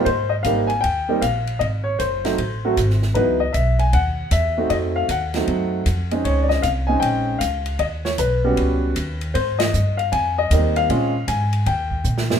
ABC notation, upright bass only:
X:1
M:4/4
L:1/8
Q:"Swing" 1/4=155
K:Bbdor
V:1 name="Upright bass" clef=bass
A,,2 A,,,2 E,,2 B,,,2 | A,,,2 _G,,,2 =A,,,2 _A,,,2 | D,,2 _C,,2 E,,2 _F,,2 | F,,2 E,,2 _G,,2 F,,2 |
D,,2 C,,2 B,,,2 D,,2 | E,,2 =B,,,2 D,,2 E,,2 | A,,2 G,,2 F,,2 E,,2 | B,,2 A,,2 E,,2 B,,2 |]